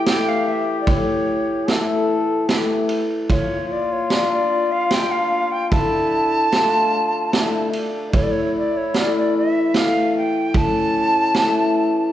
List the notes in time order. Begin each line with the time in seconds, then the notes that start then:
Already playing: A2 G4
0.06 E3 A3 E4 G5, snare, ride
0.29 F5
0.48 E5
0.81 D5
0.87 A2 C#5, kick, ride
1.68 E3 A3 E4 A4, snare, ride
2.48 E3 A3 E4 G4, snare, ride
2.89 ride
3.30 A#2 F4 C#5, kick, ride
3.72 D5
3.92 C#5
4.10 F3 A#3 D4 D5, snare, ride
4.32 D5
4.72 F5
4.90 F3 A#3 D4 G5, snare, ride
5.11 F5
5.52 G5
5.71 D3 E4 A5, kick, ride
6.52 F3 A3 D4 F4, snare, ride
7.32 F3 A3 D4 E4, snare, ride
7.73 D4, ride
8.13 A2 E4 C#5, kick, ride
8.23 D5
8.31 C#5
8.58 D5
8.77 C#5
8.94 E3 A3 C#4 D5, snare, ride
9.18 D5
9.37 E5
9.74 E3 A3 C#4 F5, snare, ride
10.17 G5
10.54 A2 C#4 A5, kick, ride
11.34 E3 A3 E4, snare, ride